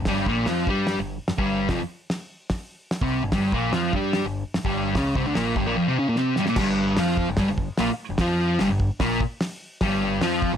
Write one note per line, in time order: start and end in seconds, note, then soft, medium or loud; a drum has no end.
0.05 0.25 G1 medium
0.05 0.27 G2 medium
0.05 0.27 G3 medium
0.05 kick medium
0.05 snare loud
0.05 open hi-hat medium
0.26 0.45 A#1 loud
0.26 0.47 A#2 medium
0.26 0.47 A#3 loud
0.26 kick loud
0.46 0.66 F2 loud
0.46 0.67 F3 medium
0.46 0.68 F4 loud
0.46 snare loud
0.46 open hi-hat medium
0.67 0.96 G2 medium
0.67 0.98 G3 medium
0.67 0.99 G4 medium
0.67 kick loud
0.87 snare loud
0.87 open hi-hat medium
0.98 1.17 G1 medium
0.98 1.15 G2 medium
1.28 muted distorted electric guitar stroke medium
1.28 muted picked electric bass stroke soft
1.28 snare loud
1.28 open hi-hat medium
1.38 1.67 G1 medium
1.38 1.68 G2 medium
1.38 1.69 G3 loud
1.38 kick loud
1.69 1.79 F1 medium
1.69 1.79 F2 medium
1.69 1.79 F3 loud
1.69 kick loud
1.69 snare loud
1.69 open hi-hat medium
2.10 snare loud
2.10 open hi-hat medium
2.50 kick loud
2.50 snare loud
2.50 open hi-hat medium
2.91 snare loud
2.91 open hi-hat medium
3.02 3.21 C2 medium
3.02 3.22 C3 medium
3.02 3.22 C4 loud
3.02 kick loud
3.23 3.31 G1 medium
3.23 3.31 G2 medium
3.32 3.51 G1 medium
3.32 3.52 G2 medium
3.32 3.53 G3 loud
3.32 kick loud
3.32 snare loud
3.32 open hi-hat medium
3.52 3.71 A#1 loud
3.52 3.73 A#2 medium
3.52 3.73 A#3 loud
3.52 kick loud
3.72 3.92 F2 medium
3.72 3.94 F3 medium
3.72 3.94 F4 medium
3.72 snare loud
3.72 open hi-hat medium
3.93 4.21 G2 loud
3.93 4.24 G3 medium
3.93 4.25 G4 loud
3.93 kick loud
4.13 snare loud
4.13 open hi-hat medium
4.24 4.43 G1 medium
4.24 4.41 G2 medium
4.54 muted picked electric bass stroke soft
4.54 muted distorted electric guitar stroke medium
4.54 snare loud
4.54 open hi-hat medium
4.65 4.93 G1 medium
4.65 4.95 G2 medium
4.65 4.95 G3 loud
4.65 kick loud
4.95 5.14 C#2 medium
4.95 5.16 C#3 medium
4.95 5.16 C#4 medium
4.95 kick loud
4.95 snare loud
4.95 open hi-hat medium
5.15 5.25 C2 loud
5.15 5.25 C3 medium
5.15 5.25 C4 loud
5.15 kick loud
5.26 5.36 D2 medium
5.26 5.34 D3 medium
5.26 5.36 D4 loud
5.34 5.55 A#1 medium
5.34 5.55 A#2 medium
5.34 5.56 A#3 loud
5.34 snare loud
5.34 open hi-hat medium
5.55 5.65 G1 loud
5.55 5.65 G2 medium
5.55 5.66 G3 medium
5.55 kick loud
5.66 5.76 A#1 loud
5.66 5.76 A#2 medium
5.66 5.76 A#3 loud
5.76 5.86 F2 loud
5.76 5.86 F3 loud
5.87 5.96 C3 medium
5.87 5.97 C4 loud
5.99 6.07 C#3 medium
5.99 6.08 C#4 medium
6.08 6.17 A#2 medium
6.08 6.18 A#3 medium
6.16 6.37 C3 medium
6.16 6.38 C4 loud
6.16 snare medium
6.36 6.47 G2 medium
6.36 6.48 G3 loud
6.36 snare medium
6.46 6.57 A#2 medium
6.46 6.58 A#3 loud
6.46 snare medium
6.56 6.95 G1 medium
6.56 6.98 G2 medium
6.56 6.98 G3 loud
6.56 kick loud
6.56 snare loud
6.56 crash loud
6.97 7.26 F2 loud
6.97 7.28 F3 medium
6.97 7.28 F4 loud
6.97 snare loud
6.97 open hi-hat medium
7.17 kick medium
7.29 7.37 G1 medium
7.29 7.37 G2 medium
7.37 7.48 G1 medium
7.37 7.48 G2 medium
7.37 7.49 G3 loud
7.37 kick loud
7.37 snare loud
7.37 open hi-hat medium
7.49 7.68 G1 medium
7.49 7.65 G2 medium
7.58 kick medium
7.78 7.89 A#1 medium
7.78 7.88 A#2 loud
7.78 7.89 A#3 loud
7.78 snare loud
7.78 open hi-hat medium
7.90 muted distorted electric guitar stroke medium
7.90 muted picked electric bass stroke soft
8.10 8.18 G1 medium
8.10 8.20 G2 medium
8.18 8.57 F2 medium
8.18 8.60 F3 medium
8.18 8.61 F4 medium
8.18 kick loud
8.18 snare loud
8.18 open hi-hat medium
8.59 8.70 G1 loud
8.59 8.69 G2 medium
8.59 8.70 G3 loud
8.59 snare loud
8.59 open hi-hat medium
8.70 8.90 G1 medium
8.70 8.86 G2 medium
8.80 kick medium
9.00 9.19 A#1 loud
9.00 9.20 A#2 loud
9.00 9.20 A#3 loud
9.00 kick loud
9.00 snare loud
9.00 open hi-hat medium
9.21 kick medium
9.41 snare loud
9.41 open hi-hat medium
9.81 10.19 G1 medium
9.81 10.22 G2 loud
9.81 10.22 G3 loud
9.81 kick loud
9.81 snare loud
9.81 open hi-hat medium
10.21 10.51 F2 loud
10.21 10.52 F3 medium
10.21 10.52 F4 loud
10.21 snare loud
10.21 open hi-hat medium
10.42 kick medium
10.53 10.57 G1 medium
10.53 10.57 G2 medium